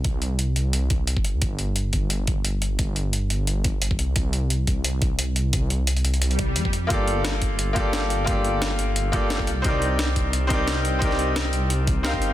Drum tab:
HH |x-x-x-x-x-x-x-x-|x-x-x-x-x-x-x-x-|x-x-x-x-x-x-x-x-|x-x-x-x-x-x-x-x-|
SD |----------------|----------------|----------------|----------------|
BD |o---------o--o--|o-----o---o-----|o---------o--o--|o-----o---o-----|

HH |x-x-xxxxxxx-x-x-|x-x-x-x-x-x-x-x-|x-x-x-x-x-x-x-x-|x-x-x-x-x-x-x-x-|
SD |----------------|----oo------o---|----oo------oo--|----oo------o---|
BD |o---------o--o--|o-----o---o-----|o---------o--o--|o-----o---o-----|

HH |x-x-x-x-x-x-x-x-|
SD |-o--oo------oo--|
BD |o---------o--o--|